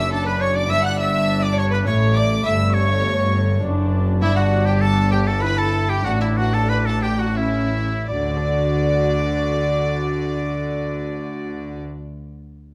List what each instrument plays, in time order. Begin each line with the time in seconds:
Already playing: double bass section F#1, lute F#2 D4 F#4, cello section F#2, oboe E5
0.00 violin section E5 E6
0.11 viola section D4, violin section A4 A5, oboe A4
0.26 oboe B4, violin section B4 B5
0.41 oboe C#5, violin section C#5 C#6
0.56 oboe D5, violin section D5 D6
0.65 lute B3 D4 E4
0.70 double bass section G1, cello section G2, lute G2, viola section D4, violin section E5 E6, oboe E5
0.84 violin section F#5 F#6, oboe F#5
0.99 violin section E5 E6, oboe E5
1.43 violin section D5 D6, oboe D5
1.57 violin section C#5 C#6, oboe C#5
1.72 violin section B4 B5, oboe B4
1.82 lute A3 C#4 E4
1.86 double bass section A1, lute A2, cello section A2, viola section A3, violin section C#5 C#6, oboe C#5
2.16 violin section D5 D6, oboe D5
2.41 lute A3 E4
2.45 double bass section G1, lute G2, cello section G2, viola section A3, violin section E5 E6, oboe E5
2.74 oboe C#5, violin section C#5 C#6
3.58 lute A3 D4
3.62 double bass section F#1, cello section F#2, lute F#2, viola section D4
4.20 double bass section G1, cello section G2, lute G2 B3 D4, viola section D4, violin section E4 E5, oboe E4
4.36 violin section F#4 F#5, oboe F#4
4.66 oboe G4, violin section G4 G5
4.81 violin section A4 A5, oboe A4
5.11 oboe G4, violin section G4 G5
5.27 oboe A4, violin section A4 A5
5.40 lute B3 E4, viola section E4, oboe B4, violin section B4 B5
5.58 oboe A4, violin section A4 A5
5.89 oboe G4, violin section G4 G5
6.03 double bass section A1, cello section A2, lute A2 A3 D4, viola section D4, oboe F#4, violin section F#4 F#5
6.21 oboe E4, violin section E4 E5
6.37 oboe F#4, violin section F#4 F#5
6.53 oboe A4, violin section A4 A5
6.69 oboe B4, violin section B4 B5
6.86 oboe A4, violin section A4 A5
7.03 oboe G4, violin section G4 G5
7.19 violin section F#4 F#5, oboe F#4
7.35 lute A3 C#4, viola section C#4, oboe E4, violin section E4 E5
8.09 double bass section D2, lute D3, cello section D3, viola section F#4, oboe D5, violin section D5
8.15 lute F#3
8.23 lute A3
8.29 lute D4
8.36 lute A4